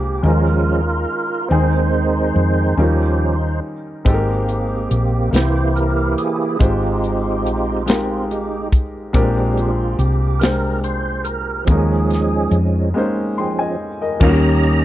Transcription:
0.00 0.20 C2 medium
0.00 0.19 A#2 medium
0.00 0.22 G#3 medium
0.00 0.25 C4 medium
0.00 0.25 D4 medium
0.00 0.22 G4 medium
0.00 0.25 G4 medium
0.00 0.25 A#4 medium
0.22 1.04 D#2 medium
0.22 1.47 D#3 soft
0.22 0.81 F3 soft
0.22 1.17 G#3 soft
0.22 1.17 C#4 soft
0.22 1.18 D#4 soft
0.22 1.18 F4 soft
0.22 1.18 A#4 medium
0.27 0.82 G#3 soft
0.27 0.82 C#4 medium
0.27 1.49 F4 soft
0.27 1.48 A#4 medium
1.49 2.32 D#2 medium
1.49 2.74 D#3 medium
1.49 2.75 D#3 soft
1.49 2.44 C4 medium
1.49 2.75 C4 soft
1.49 2.44 D#4 medium
1.49 2.45 G#4 medium
1.49 3.60 C5 medium
1.53 2.75 G#3 soft
1.53 3.60 D#4 medium
2.36 2.75 F2 medium
2.77 3.59 D#2 medium
2.77 4.02 D#3 medium
2.77 3.35 F3 soft
2.77 3.72 G3 medium
2.77 3.72 C#4 soft
2.77 3.72 D#4 medium
2.77 3.73 F4 medium
2.77 3.36 G4 soft
2.77 3.73 A#4 medium
2.81 3.36 C#4 soft
4.05 4.87 G#1 medium
4.05 5.29 G#2 medium
4.05 4.99 G#3 medium
4.05 5.30 A#3 soft
4.05 4.99 C4 medium
4.05 5.30 C4 soft
4.05 4.99 D#4 medium
4.05 5.30 G4 soft
4.05 5.00 G4 medium
4.05 4.13 A4 medium
4.05 kick medium
4.05 closed hi-hat medium
4.14 5.04 A#4 medium
4.49 closed hi-hat soft
4.91 5.30 A#1 medium
4.91 closed hi-hat soft
5.31 6.14 C2 medium
5.31 6.56 C3 soft
5.31 6.26 A#3 medium
5.31 6.27 C4 soft
5.31 6.27 E4 soft
5.31 6.27 G4 soft
5.31 closed hi-hat medium
5.35 6.57 E3 soft
5.35 6.57 A#3 soft
5.35 6.58 E4 medium
5.35 6.58 G4 medium
5.35 6.28 C5 medium
5.35 5.74 C5 medium
5.35 snare medium
5.76 6.15 A#4 medium
5.76 closed hi-hat soft
6.18 6.62 G#4 medium
6.18 closed hi-hat soft
6.59 7.45 G#1 medium
6.59 7.83 G#2 soft
6.59 7.53 G#3 medium
6.59 7.83 G#3 soft
6.59 8.26 C4 soft
6.59 7.54 D#4 medium
6.59 7.84 D#4 soft
6.59 7.54 F4 medium
6.59 8.26 F4 medium
6.59 7.83 G4 soft
6.59 7.54 G4 medium
6.59 7.55 C5 medium
6.59 kick medium
6.59 closed hi-hat medium
7.04 closed hi-hat soft
7.45 9.10 A#1 medium
7.45 closed hi-hat soft
7.86 8.80 G#3 medium
7.86 8.81 D#4 medium
7.86 8.81 F4 medium
7.86 8.82 G4 medium
7.86 8.82 A#4 medium
7.86 snare medium
7.86 closed hi-hat medium
8.30 8.68 G#3 soft
8.30 8.69 D#4 soft
8.30 8.69 G4 soft
8.30 closed hi-hat soft
8.72 kick medium
8.72 closed hi-hat soft
9.13 9.95 A#1 medium
9.13 10.37 A#2 medium
9.13 10.07 G#3 medium
9.13 9.71 G#3 soft
9.13 10.08 C4 medium
9.13 9.71 C4 soft
9.13 10.08 D4 medium
9.13 9.71 D4 soft
9.13 9.71 G4 soft
9.13 10.09 G4 medium
9.13 10.09 A#4 medium
9.13 kick medium
9.13 closed hi-hat medium
9.57 9.98 F4 medium
9.57 closed hi-hat soft
9.99 11.64 C2 medium
9.99 10.43 G4 medium
9.99 closed hi-hat soft
10.39 11.35 G#3 medium
10.39 11.35 C4 soft
10.39 11.35 D4 soft
10.39 11.36 G4 soft
10.39 10.80 A#4 medium
10.39 closed hi-hat medium
10.44 11.36 C5 medium
10.44 snare medium
10.84 11.27 C5 medium
10.84 closed hi-hat soft
11.24 11.64 A#4 medium
11.24 closed hi-hat soft
11.65 12.48 D#2 medium
11.65 12.89 F3 soft
11.65 12.90 G#3 soft
11.65 12.61 G#3 medium
11.65 12.62 A#3 medium
11.65 12.90 C#4 soft
11.65 12.58 G#4 medium
11.65 kick medium
11.65 closed hi-hat medium
11.69 12.91 D#3 soft
11.69 12.62 C#4 medium
11.69 12.63 D#4 medium
11.69 12.63 A#4 medium
12.10 snare soft
12.10 closed hi-hat soft
12.51 12.92 F2 medium
12.51 closed hi-hat soft
12.94 13.88 G#3 medium
12.94 13.88 A#3 medium
12.94 13.89 C#4 medium
12.94 13.89 D#4 medium
12.94 13.38 C5 medium
13.38 13.76 F3 soft
13.38 13.76 G#3 soft
13.38 13.76 C#4 soft
13.38 13.58 G5 soft
13.38 13.57 C6 soft
13.59 13.99 D#5 soft
13.59 13.98 G#5 medium
14.02 14.21 A#4 soft
14.02 14.41 D#5 soft
14.20 14.85 D#2 medium
14.20 14.85 D#3 medium
14.20 14.27 F3 medium
14.20 14.85 A#3 medium
14.20 14.85 C#4 medium
14.20 14.85 D#4 medium
14.20 14.85 G4 medium
14.20 14.85 A#4 medium
14.20 14.85 D#5 medium
14.20 14.85 A#5 medium
14.20 kick loud
14.20 crash medium
14.24 14.85 G3 medium
14.24 14.85 A#3 medium
14.24 14.85 C#4 medium
14.63 ride soft

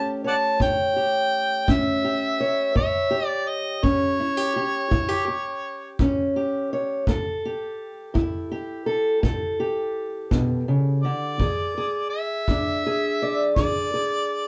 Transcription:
0.00 0.16 A2 medium
0.00 2.72 A3 medium
0.00 1.68 C#4 medium
0.00 0.96 G4 medium
0.00 0.24 C#5 medium
0.00 0.10 A5 loud
0.24 0.60 C#5 medium
0.24 0.36 D5 medium
0.24 0.34 F#5 medium
0.24 0.59 A5 medium
0.60 1.24 A2 medium
0.60 2.40 C#5 medium
0.60 1.73 G5 loud
0.60 kick medium
0.96 2.04 G4 soft
1.68 2.33 A2 medium
1.68 3.13 C#4 medium
1.68 2.76 E5 medium
1.68 kick medium
2.04 2.78 G4 medium
2.40 2.75 C#5 medium
2.75 3.40 A2 medium
2.75 6.72 C#5 medium
2.75 3.27 E5 medium
2.75 kick medium
3.10 4.19 G4 medium
3.27 3.49 D5 medium
3.48 3.86 D#5 medium
3.83 4.48 A2 medium
3.83 6.00 C#4 medium
3.83 6.00 C#5 medium
3.83 kick medium
4.20 4.37 E4 medium
4.37 4.55 G4 soft
4.56 4.91 G4 medium
4.91 5.56 A2 medium
4.91 5.08 E4 medium
4.91 kick medium
5.08 5.27 G4 soft
5.28 6.35 G4 medium
5.99 6.64 A2 medium
5.99 7.04 C#4 medium
5.99 kick medium
6.36 7.04 G4 medium
6.73 7.04 C#5 medium
7.07 7.73 A2 medium
7.07 8.85 A4 medium
7.07 kick medium
7.45 8.50 G4 medium
8.14 8.80 A2 medium
8.14 11.35 E4 medium
8.14 kick medium
8.51 9.59 G4 medium
8.86 9.22 A4 medium
9.23 9.88 A2 medium
9.23 11.40 A4 medium
9.23 kick medium
9.60 11.36 G4 medium
10.31 10.67 B2 medium
10.31 kick medium
10.68 11.04 C#3 medium
11.03 11.40 D3 medium
11.03 12.08 D5 medium
11.40 12.05 E3 medium
11.40 11.76 G#4 medium
11.40 kick medium
11.78 12.85 G#4 medium
12.10 13.51 E5 medium
12.48 13.14 E3 medium
12.48 14.48 D4 medium
12.48 kick medium
12.86 13.57 G#4 medium
13.22 14.48 D5 medium
13.56 14.22 E3 medium
13.56 13.93 G#4 medium
13.56 14.48 D5 loud
13.56 kick medium
13.94 14.48 G#4 medium

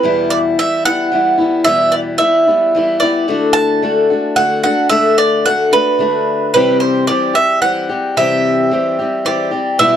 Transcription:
0.00 0.58 E2 medium
0.00 0.30 B4 medium
0.04 0.59 B2 medium
0.04 0.58 E3 medium
0.04 0.59 G3 medium
0.04 0.59 B3 medium
0.04 0.59 E4 medium
0.30 0.38 D5 medium
0.59 0.86 E3 soft
0.59 0.85 G3 soft
0.59 0.85 B3 medium
0.59 0.84 E4 medium
0.59 0.85 E5 medium
0.85 1.10 E3 soft
0.85 1.12 G3 soft
0.85 1.12 B3 soft
0.85 1.12 E4 soft
0.85 1.63 F#5 medium
1.12 1.39 E3 soft
1.12 1.39 G3 medium
1.12 1.38 B3 medium
1.12 1.36 E4 medium
1.38 1.65 E3 soft
1.38 1.65 G3 soft
1.38 1.66 B3 soft
1.38 1.66 E4 soft
1.64 2.20 E2 medium
1.64 2.21 B2 medium
1.64 2.19 E3 medium
1.64 2.20 G3 medium
1.64 2.20 B3 medium
1.64 2.21 E4 medium
1.64 1.94 E5 medium
1.92 1.99 D5 medium
2.18 2.48 E3 soft
2.18 2.48 G3 soft
2.18 2.47 B3 medium
2.18 2.99 E5 medium
2.23 2.46 E4 medium
2.47 2.73 E3 soft
2.47 2.75 G3 soft
2.47 2.75 B3 soft
2.47 2.75 E4 soft
2.75 3.02 E3 soft
2.75 3.03 G3 medium
2.75 3.02 B3 medium
2.75 3.01 E4 medium
3.00 3.29 B3 soft
3.00 3.30 E4 soft
3.00 3.52 D5 medium
3.04 3.27 E3 soft
3.04 3.28 G3 soft
3.28 3.81 D3 medium
3.28 3.82 A3 medium
3.28 3.82 D4 medium
3.28 3.83 F#4 medium
3.53 4.36 A5 medium
3.82 4.10 D3 soft
3.82 4.11 A3 soft
3.82 4.10 D4 medium
3.82 4.09 F#4 medium
4.10 4.36 A3 soft
4.10 4.37 D4 soft
4.10 4.37 F#4 soft
4.36 4.64 D3 soft
4.36 4.65 A3 soft
4.36 4.64 D4 soft
4.36 4.62 F#4 medium
4.36 4.62 F#5 medium
4.63 4.89 A3 soft
4.63 4.90 D4 soft
4.63 4.90 F#4 soft
4.63 4.89 F#5 medium
4.89 5.44 D3 medium
4.89 5.45 A3 medium
4.89 5.45 D4 medium
4.89 5.46 F#4 medium
4.89 5.16 E5 medium
5.18 5.47 D5 medium
5.45 5.73 D3 soft
5.45 5.73 A3 soft
5.45 5.71 D4 medium
5.45 5.70 F#4 soft
5.45 5.74 F#5 medium
5.71 5.99 A3 soft
5.71 5.99 D4 soft
5.71 6.00 F#4 soft
5.71 6.51 B4 medium
5.99 6.54 D3 soft
5.99 6.54 A3 soft
5.99 6.55 D4 medium
5.99 6.55 F#4 medium
6.54 7.09 C3 medium
6.54 7.07 E3 medium
6.54 7.09 G3 medium
6.54 7.09 C4 medium
6.54 7.11 G4 medium
6.54 6.80 B4 medium
6.80 7.07 C5 medium
7.07 7.36 E3 medium
7.07 7.36 G3 soft
7.07 7.34 C4 medium
7.07 7.32 G4 medium
7.07 7.36 D5 medium
7.33 7.61 G3 soft
7.33 7.63 C4 soft
7.33 7.62 G4 soft
7.33 7.61 E5 medium
7.61 7.90 E3 medium
7.61 7.90 G3 medium
7.61 7.90 C4 medium
7.61 7.88 G4 medium
7.61 8.17 F#5 medium
7.89 8.17 G3 soft
7.89 8.17 C4 soft
7.89 8.17 G4 soft
8.17 8.72 C3 medium
8.17 8.70 E3 medium
8.17 8.71 G3 medium
8.17 8.72 C4 medium
8.17 8.73 G4 medium
8.17 9.49 E5 medium
8.71 8.99 E3 soft
8.71 8.99 G3 soft
8.71 8.98 C4 soft
8.71 8.98 G4 medium
8.99 9.24 G3 soft
8.99 9.25 C4 soft
8.99 9.26 G4 soft
9.25 9.53 E3 medium
9.25 9.53 G3 medium
9.25 9.52 C4 medium
9.25 9.50 G4 medium
9.25 9.79 D5 medium
9.51 9.79 G3 soft
9.51 9.79 C4 soft
9.51 9.79 G4 soft
9.79 9.96 E2 medium
9.79 9.96 B2 medium
9.79 9.96 E3 medium
9.79 9.96 G3 medium
9.79 9.96 B3 medium
9.79 9.96 E4 medium
9.79 9.96 E5 medium

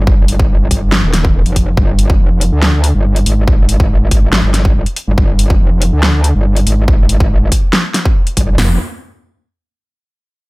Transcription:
0.00 0.69 G1 medium
0.07 kick loud
0.28 closed hi-hat medium
0.40 kick loud
0.71 1.02 G1 loud
0.71 kick medium
0.71 closed hi-hat medium
0.92 snare loud
1.03 1.44 D#1 loud
1.14 snare medium
1.14 closed hi-hat medium
1.25 kick loud
1.46 1.76 F1 loud
1.46 closed hi-hat soft
1.56 kick medium
1.56 closed hi-hat medium
1.77 2.18 G1 loud
1.77 kick loud
1.99 closed hi-hat medium
2.10 kick loud
2.20 2.51 F1 loud
2.41 closed hi-hat medium
2.52 2.93 D2 medium
2.63 snare loud
2.84 closed hi-hat medium
2.95 3.25 G1 medium
3.16 closed hi-hat soft
3.26 4.10 G#1 medium
3.26 closed hi-hat medium
3.48 kick loud
3.69 closed hi-hat medium
3.80 kick loud
4.11 4.42 G#1 medium
4.11 kick medium
4.11 closed hi-hat medium
4.33 snare loud
4.44 4.74 G1 loud
4.54 snare medium
4.54 closed hi-hat medium
4.65 kick loud
4.75 4.85 G1 loud
4.86 closed hi-hat soft
4.96 closed hi-hat medium
5.08 5.16 G1 loud
5.18 5.59 G1 loud
5.18 kick loud
5.39 closed hi-hat medium
5.50 kick loud
5.60 5.91 F1 loud
5.82 closed hi-hat medium
5.93 6.33 D2 medium
6.03 snare loud
6.24 closed hi-hat medium
6.35 6.65 G1 loud
6.57 closed hi-hat soft
6.67 7.50 G#1 medium
6.67 closed hi-hat medium
6.88 kick loud
7.09 closed hi-hat medium
7.20 kick loud
7.52 kick medium
7.52 closed hi-hat medium
7.73 snare loud
7.94 snare medium
7.94 closed hi-hat medium
8.05 kick loud
8.27 closed hi-hat soft
8.37 8.57 G1 medium
8.37 kick medium
8.37 closed hi-hat medium
8.58 8.78 F1 loud
8.58 snare loud
8.58 floor tom loud
8.58 open hi-hat medium

